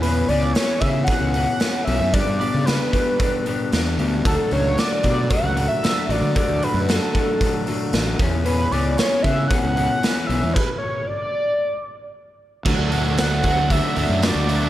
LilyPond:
<<
  \new Staff \with { instrumentName = "Analog synth lead" } { \time 4/4 \key d \major \tempo 4 = 114 b'8 d''8 cis''8 e''8 fis''4. e''8 | d''8 d''8 b'2 r4 | a'8 cis''8 d''8 d''8 fis''8. e''8. d''8 | d''8 b'8 a'2 r4 |
b'8 d''8 cis''8 e''8 fis''4. e''8 | b'8 cis''8 d''2 r4 | r4 fis''4 e''4 d''4 | }
  \new Staff \with { instrumentName = "Clean electric guitar" } { \time 4/4 \key d \major <e b cis' gis'>8 <e b cis' gis'>8 <e b cis' gis'>8 <e b cis' gis'>8 <e b cis' gis'>8 <e b cis' gis'>8 <e b cis' gis'>8 <e b cis' gis'>8 | <g b d' g'>8 <g b d' g'>8 <g b d' g'>8 <g b d' g'>8 <g b d' g'>8 <g b d' g'>8 <g b d' g'>8 <g b d' g'>8 | <d fis a d' fis'>8 <d fis a d' fis'>8 <d fis a d' fis'>8 <d fis a d' fis'>8 <d fis a d' fis'>8 <d fis a d' fis'>8 <d fis a d' fis'>8 <d fis a d' fis'>8 | <d fis a d' fis'>8 <d fis a d' fis'>8 <d fis a d' fis'>8 <d fis a d' fis'>8 <d fis a d' fis'>8 <d fis a d' fis'>8 <d fis a d' fis'>8 <e b cis' gis'>8 |
<e b cis' gis'>8 <e b cis' gis'>8 <e b cis' gis'>8 <e b cis' gis'>8 <e b cis' gis'>8 <e b cis' gis'>8 <e b cis' gis'>8 <e b cis' gis'>8 | r1 | <d fis a d' fis'>8 <d fis a d' fis'>8 <d fis a d' fis'>8 <d fis a d' fis'>8 <d fis a d' fis'>8 <d fis a d' fis'>8 <d fis a d' fis'>8 <d fis a d' fis'>8 | }
  \new Staff \with { instrumentName = "Overdriven electric guitar" } { \time 4/4 \key d \major r1 | r1 | r1 | r1 |
r1 | r1 | <d fis a d' fis'>8 <d fis a d' fis'>8 <d fis a d' fis'>8 <d fis a d' fis'>8 <d fis a d' fis'>8 <d fis a d' fis'>8 <d fis a d' fis'>8 <d fis a d' fis'>8 | }
  \new Staff \with { instrumentName = "Fingered electric bass" } { \clef bass \time 4/4 \key d \major e,8 cis,8 r8 cis8 r16 cis,8 r8. b,,16 fis,16 | g,16 g,16 r16 cis8 r4. r16 e,8 d,8 | d,16 r16 cis,8 r8 b,8 r16 cis,8 r8. a,,16 d16 | r16 d,16 r16 fis,8 r4. r16 a,,8 e,8~ |
e,8 cis,8 r8 cis8 r16 cis,8 r8. b,,16 e,16 | r1 | d,16 d,2 r16 d,16 fis,8 d,8. | }
  \new DrumStaff \with { instrumentName = "Drums" } \drummode { \time 4/4 hho8 hho8 <hho sn>8 <hho bd>8 <hho bd>8 hho8 <hho sn>8 hho8 | <hho bd>8 hho8 <hho sn>8 <hho bd>8 <hho bd>8 hho8 <hho sn>8 hho8 | <hho bd>8 hho8 <hho sn>8 <hho bd>8 <hho bd>8 hho8 <hho sn>8 hho8 | <hho bd>8 hho8 <hho sn>8 <hho bd>8 <hho bd>8 hho8 <hho sn>8 <hho bd>8 |
hho8 hho8 <hho sn>8 <hho bd>8 <hho bd>8 hho8 <hho sn>8 hho8 | <cymc bd>4 r4 r4 r4 | <cymc bd>8 hho8 <hho sn>8 <hho bd>8 <hho bd>8 hho8 <hho sn>8 hho8 | }
>>